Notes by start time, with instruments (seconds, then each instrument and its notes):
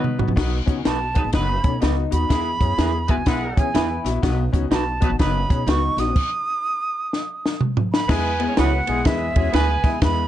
Already playing: horn section F#3 D#4 B4, clean electric guitar B3
0.04 mid tom
0.18 upright bass C#2, grand piano B3 D#4 F#4, floor tom
0.28 upright bass B1, floor tom
0.36 upright bass B1, horn section F#3 D#4 B4, grand piano B3 D#4 F#4, clean electric guitar B3, kick, snare, crash
0.66 upright bass C#2, grand piano B3 D#4 F#4, clean electric guitar C#4, kick, closed hi-hat
0.84 upright bass B1, grand piano B3 D#4 F#4, clean electric guitar D#4 F#4 B4, flute A5, snare, closed hi-hat
1.15 horn section F#3 D#4 B4, clean electric guitar B3, grand piano B3 D#4 G#4, kick, closed hi-hat
1.24 upright bass G#1
1.33 upright bass F#1, horn section F#3 D#4 B4, clean electric guitar B3, grand piano B3 D#4 F#4, flute B5, kick, snare, closed hi-hat
1.63 upright bass B2, grand piano B3 D#4 A4, clean electric guitar C#4, kick, closed hi-hat
1.80 upright bass C#2, grand piano B3 D#4 F#4, clean electric guitar D#4 F#4 B4, snare, closed hi-hat
2.11 upright bass D#2, grand piano B3 D#4 F#4, flute B5, closed hi-hat
2.29 upright bass E2, horn section G#3 E4 B4, grand piano B3 E4 G#4, clean electric guitar E4, kick, snare, closed hi-hat
2.60 upright bass F#2, grand piano B3 E4 G#4, clean electric guitar C#4, kick, closed hi-hat
2.78 upright bass E2, grand piano B3 E4 G#4, clean electric guitar E4 G#4 B4, snare, closed hi-hat
3.08 horn section G#3 E4 B4, grand piano B3 E4 F#4, clean electric guitar B3, flute G#5, kick, closed hi-hat
3.18 upright bass C#2
3.26 upright bass B1, horn section G#3 E4 B4, grand piano B3 E4 G#4, clean electric guitar B3, flute F#5, kick, snare, closed hi-hat
3.56 upright bass E3, grand piano B3 E4 G#4, clean electric guitar C#4, flute G#5, kick, closed hi-hat
3.74 upright bass E2, grand piano B3 E4 B4, clean electric guitar E4 G#4 B4, snare, closed hi-hat
4.04 upright bass A#1, grand piano B3 E4 F#4, snare, closed hi-hat
4.22 upright bass B1, horn section F#3 D#4 B4, grand piano B3 D#4 F#4, clean electric guitar B3, kick, snare, closed hi-hat
4.52 upright bass C#2, grand piano B3 D#4 F#4, clean electric guitar C#4, kick, closed hi-hat
4.71 upright bass B1, grand piano B3 D#4 F#4, clean electric guitar D#4 F#4 B4, flute A5, snare, closed hi-hat
5.01 horn section F#3 D#4 B4, grand piano B3 D#4 F#4, clean electric guitar B3, kick, closed hi-hat
5.10 upright bass G#1
5.19 upright bass F#1, horn section F#3 D#4 B4, clean electric guitar B3, grand piano B3 D#4 F#4, flute B5, kick, snare, closed hi-hat
5.49 upright bass B2, grand piano B3 D#4 G#4, clean electric guitar C#4, kick, closed hi-hat
5.67 upright bass C#2, grand piano B3 D#4 F#4, clean electric guitar D#4 F#4 B4, flute C#6, snare, closed hi-hat
5.97 upright bass A#1, grand piano B3 D#4 F#4, flute D#6, snare, closed hi-hat
6.16 kick, crash
7.13 snare
7.46 snare
7.61 mid tom
7.77 floor tom
7.93 flute B5, snare
8.08 upright bass E2, grand piano G#3 B3 E4 G#4, horn section B3 B4, flute G#5, kick, snare, crash
8.39 grand piano G#3 B3 E4 G#4, clean electric guitar B3, ride
8.48 horn section C#4 C#5
8.57 upright bass C#2, grand piano G#3 B3 E4 F#4, horn section B3 B4, clean electric guitar C#4 E4 G#4 B4, flute F#5, snare, ride
8.87 upright bass B1, horn section G#3 G#4, grand piano G#3 B3 E4 G#4, clean electric guitar B3, ride
9.05 upright bass E2, grand piano G#3 B3 E4 B4, flute E5, kick, snare, ride
9.35 upright bass E2, horn section G#3 G#4, grand piano G#3 B3 E4 F#4, clean electric guitar C#4, kick, ride
9.53 upright bass D2, grand piano G#3 B3 E4 G#4, horn section B3 B4, clean electric guitar E4 G#4 B4, flute G#5, snare, ride
9.83 upright bass D#2, grand piano G#3 B3 E4 G#4, clean electric guitar E4, kick, snare, ride
10.01 upright bass E2, grand piano G#3 B3 E4 B4, flute B5, kick, snare, ride